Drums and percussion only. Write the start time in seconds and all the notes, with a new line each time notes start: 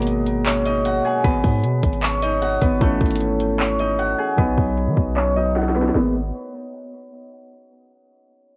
0.02 closed hi-hat
0.07 closed hi-hat
0.26 closed hi-hat
0.46 clap, closed hi-hat
0.66 closed hi-hat
0.85 closed hi-hat
1.24 kick, closed hi-hat
1.44 kick, open hi-hat
1.64 closed hi-hat
1.83 kick, closed hi-hat
1.93 closed hi-hat
2.03 clap, closed hi-hat
2.22 closed hi-hat
2.42 closed hi-hat
2.62 kick, closed hi-hat
2.81 kick, closed hi-hat
3.01 kick, closed hi-hat
3.06 closed hi-hat
3.11 closed hi-hat
3.16 closed hi-hat
3.20 closed hi-hat
3.40 closed hi-hat
3.60 clap, closed hi-hat
3.79 closed hi-hat
3.99 closed hi-hat
4.38 kick, closed hi-hat
4.58 kick, open hi-hat
4.77 closed hi-hat
4.97 kick, closed hi-hat
5.17 clap, closed hi-hat
5.36 closed hi-hat
5.41 closed hi-hat
5.46 closed hi-hat
5.51 closed hi-hat
5.56 snare, closed hi-hat
5.62 snare, closed hi-hat
5.69 snare, closed hi-hat
5.75 snare, closed hi-hat
5.82 snare
5.88 snare
5.95 snare, open hi-hat